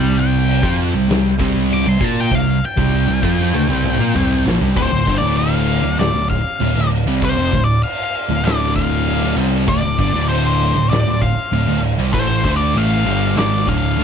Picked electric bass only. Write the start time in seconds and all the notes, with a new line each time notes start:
Already playing: C2
0.63 F2
0.94 C2
1.09 C2
1.39 C2
1.85 C2
2.01 A#2
2.31 C2
2.77 C2
3.07 C2
3.23 F2
3.54 D2
3.68 C2
3.99 A#2
4.15 C2
4.45 A#1
4.61 C2
4.76 D1
4.91 D1
5.07 G1
5.21 D1
5.83 D1
5.99 D1
6.13 D1
6.60 D1
6.75 D1
7.06 C2
7.37 F1
7.53 D1
8.29 D1
8.44 D1
9.36 C2
9.68 D1
9.82 D1
9.98 G1
10.13 D1
10.75 D1
10.90 D1
11.06 D1
11.52 D1
11.67 D1
11.98 C2
12.13 A1
12.44 D2
12.75 A1
13.06 G1
13.37 G#1
13.67 D1
13.98 D2